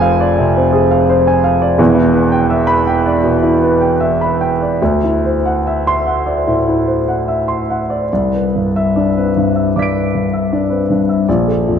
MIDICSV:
0, 0, Header, 1, 2, 480
1, 0, Start_track
1, 0, Key_signature, 0, "major"
1, 0, Tempo, 715137
1, 1205, Time_signature, 4, 2, 24, 8
1, 1683, Tempo, 741656
1, 2643, Tempo, 816327
1, 4563, Tempo, 842697
1, 5523, Tempo, 807537
1, 6003, Tempo, 766284
1, 7283, End_track
2, 0, Start_track
2, 0, Title_t, "Grand piano"
2, 0, Program_c, 0, 0
2, 0, Control_c, 0, 64, 127
2, 0, Note_on_c, 0, 29, 70
2, 0, Note_on_c, 0, 41, 81
2, 0, Note_on_c, 0, 60, 53
2, 0, Note_on_c, 0, 68, 57
2, 0, Note_on_c, 0, 72, 64
2, 0, Note_on_c, 0, 77, 64
2, 0, Note_on_c, 0, 80, 81
2, 9, Note_off_c, 0, 77, 0
2, 9, Note_on_c, 0, 77, 64
2, 76, Note_off_c, 0, 80, 0
2, 138, Note_on_c, 0, 74, 62
2, 199, Note_off_c, 0, 77, 0
2, 220, Note_off_c, 0, 29, 0
2, 224, Note_off_c, 0, 41, 0
2, 258, Note_on_c, 0, 48, 57
2, 324, Note_off_c, 0, 74, 0
2, 381, Note_off_c, 0, 60, 0
2, 381, Note_on_c, 0, 60, 58
2, 445, Note_off_c, 0, 48, 0
2, 487, Note_off_c, 0, 68, 0
2, 487, Note_on_c, 0, 68, 56
2, 568, Note_off_c, 0, 60, 0
2, 612, Note_on_c, 0, 77, 61
2, 683, Note_off_c, 0, 68, 0
2, 734, Note_off_c, 0, 72, 0
2, 734, Note_on_c, 0, 72, 62
2, 806, Note_off_c, 0, 77, 0
2, 855, Note_on_c, 0, 80, 65
2, 925, Note_off_c, 0, 72, 0
2, 966, Note_on_c, 0, 77, 61
2, 1043, Note_off_c, 0, 80, 0
2, 1085, Note_on_c, 0, 74, 58
2, 1156, Note_off_c, 0, 77, 0
2, 1192, Note_on_c, 0, 28, 72
2, 1201, Note_on_c, 0, 40, 78
2, 1203, Note_off_c, 0, 74, 0
2, 1216, Control_c, 0, 64, 0
2, 1307, Note_on_c, 0, 64, 52
2, 1322, Control_c, 0, 64, 127
2, 1431, Note_on_c, 0, 71, 57
2, 1506, Note_off_c, 0, 64, 0
2, 1556, Note_on_c, 0, 79, 62
2, 1629, Note_off_c, 0, 71, 0
2, 1679, Note_on_c, 0, 76, 63
2, 1750, Note_off_c, 0, 79, 0
2, 1788, Note_on_c, 0, 83, 80
2, 1868, Note_off_c, 0, 76, 0
2, 1919, Note_on_c, 0, 79, 59
2, 1982, Note_off_c, 0, 83, 0
2, 2041, Note_on_c, 0, 74, 56
2, 2107, Note_off_c, 0, 79, 0
2, 2121, Note_off_c, 0, 28, 0
2, 2126, Note_off_c, 0, 40, 0
2, 2155, Note_on_c, 0, 47, 54
2, 2228, Note_off_c, 0, 74, 0
2, 2277, Note_on_c, 0, 64, 55
2, 2347, Note_off_c, 0, 47, 0
2, 2408, Note_on_c, 0, 71, 55
2, 2470, Note_off_c, 0, 64, 0
2, 2528, Note_on_c, 0, 79, 52
2, 2599, Note_off_c, 0, 71, 0
2, 2651, Note_on_c, 0, 76, 59
2, 2716, Note_off_c, 0, 79, 0
2, 2774, Note_on_c, 0, 83, 56
2, 2833, Note_off_c, 0, 76, 0
2, 2889, Note_on_c, 0, 79, 55
2, 2956, Note_off_c, 0, 83, 0
2, 3011, Note_on_c, 0, 74, 47
2, 3077, Note_off_c, 0, 79, 0
2, 3128, Note_off_c, 0, 74, 0
2, 3129, Note_on_c, 0, 38, 65
2, 3130, Control_c, 0, 64, 0
2, 3226, Control_c, 0, 64, 127
2, 3258, Note_on_c, 0, 64, 45
2, 3384, Note_on_c, 0, 72, 49
2, 3450, Note_off_c, 0, 64, 0
2, 3504, Note_on_c, 0, 78, 56
2, 3572, Note_off_c, 0, 72, 0
2, 3631, Note_on_c, 0, 76, 56
2, 3690, Note_off_c, 0, 78, 0
2, 3750, Note_on_c, 0, 84, 71
2, 3812, Note_off_c, 0, 76, 0
2, 3862, Note_on_c, 0, 78, 52
2, 3929, Note_off_c, 0, 84, 0
2, 3977, Note_on_c, 0, 74, 48
2, 4044, Note_off_c, 0, 78, 0
2, 4066, Note_off_c, 0, 38, 0
2, 4101, Note_on_c, 0, 45, 51
2, 4161, Note_off_c, 0, 74, 0
2, 4220, Note_on_c, 0, 64, 46
2, 4283, Note_off_c, 0, 45, 0
2, 4337, Note_on_c, 0, 72, 50
2, 4403, Note_off_c, 0, 64, 0
2, 4461, Note_on_c, 0, 78, 51
2, 4521, Note_off_c, 0, 72, 0
2, 4577, Note_on_c, 0, 76, 50
2, 4641, Note_off_c, 0, 78, 0
2, 4691, Note_on_c, 0, 84, 50
2, 4759, Note_off_c, 0, 76, 0
2, 4816, Note_on_c, 0, 78, 49
2, 4878, Note_off_c, 0, 84, 0
2, 4930, Note_on_c, 0, 74, 49
2, 5002, Note_off_c, 0, 78, 0
2, 5046, Note_off_c, 0, 74, 0
2, 5052, Control_c, 0, 64, 0
2, 5058, Note_on_c, 0, 36, 51
2, 5060, Note_on_c, 0, 74, 47
2, 5158, Control_c, 0, 64, 127
2, 5182, Note_on_c, 0, 71, 40
2, 5244, Note_off_c, 0, 74, 0
2, 5303, Note_on_c, 0, 43, 40
2, 5365, Note_off_c, 0, 71, 0
2, 5421, Note_on_c, 0, 76, 58
2, 5485, Note_off_c, 0, 43, 0
2, 5534, Note_on_c, 0, 74, 46
2, 5538, Note_on_c, 0, 62, 43
2, 5606, Note_off_c, 0, 76, 0
2, 5660, Note_on_c, 0, 60, 35
2, 5661, Note_on_c, 0, 71, 46
2, 5725, Note_off_c, 0, 74, 0
2, 5727, Note_off_c, 0, 62, 0
2, 5775, Note_off_c, 0, 60, 0
2, 5776, Note_on_c, 0, 43, 44
2, 5778, Note_on_c, 0, 62, 41
2, 5847, Note_off_c, 0, 71, 0
2, 5890, Note_on_c, 0, 76, 44
2, 5960, Note_off_c, 0, 43, 0
2, 5961, Note_off_c, 0, 62, 0
2, 5987, Note_off_c, 0, 36, 0
2, 6010, Note_on_c, 0, 86, 35
2, 6012, Note_on_c, 0, 43, 44
2, 6012, Note_on_c, 0, 74, 43
2, 6030, Note_on_c, 0, 95, 35
2, 6050, Note_on_c, 0, 98, 36
2, 6075, Note_off_c, 0, 76, 0
2, 6129, Note_on_c, 0, 71, 42
2, 6196, Note_off_c, 0, 43, 0
2, 6196, Note_off_c, 0, 74, 0
2, 6253, Note_on_c, 0, 43, 42
2, 6311, Note_off_c, 0, 71, 0
2, 6370, Note_on_c, 0, 76, 43
2, 6432, Note_off_c, 0, 43, 0
2, 6489, Note_on_c, 0, 62, 39
2, 6491, Note_on_c, 0, 74, 45
2, 6551, Note_off_c, 0, 76, 0
2, 6598, Note_on_c, 0, 71, 40
2, 6602, Note_on_c, 0, 60, 34
2, 6672, Note_off_c, 0, 62, 0
2, 6673, Note_off_c, 0, 74, 0
2, 6717, Note_off_c, 0, 60, 0
2, 6725, Note_on_c, 0, 43, 42
2, 6728, Note_on_c, 0, 62, 41
2, 6788, Note_off_c, 0, 71, 0
2, 6843, Note_on_c, 0, 76, 42
2, 6913, Note_off_c, 0, 43, 0
2, 6915, Note_off_c, 0, 62, 0
2, 6934, Note_off_c, 0, 86, 0
2, 6944, Note_off_c, 0, 95, 0
2, 6953, Note_off_c, 0, 98, 0
2, 6960, Note_off_c, 0, 76, 0
2, 6965, Note_on_c, 0, 74, 50
2, 6966, Control_c, 0, 64, 0
2, 6968, Note_on_c, 0, 34, 56
2, 7085, Control_c, 0, 64, 127
2, 7088, Note_on_c, 0, 69, 40
2, 7156, Note_off_c, 0, 74, 0
2, 7216, Note_on_c, 0, 41, 43
2, 7279, Note_off_c, 0, 69, 0
2, 7283, Note_off_c, 0, 34, 0
2, 7283, Note_off_c, 0, 41, 0
2, 7283, End_track
0, 0, End_of_file